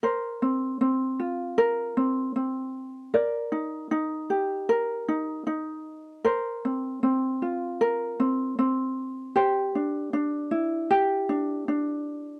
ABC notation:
X:1
M:4/4
L:1/8
Q:1/4=77
K:Bb
V:1 name="Ukulele"
[Bc] C C F B C C2 | [Bd] E E G B E E2 | [Bc] C C F B C C2 | [Gc] D D =E G D D2 |]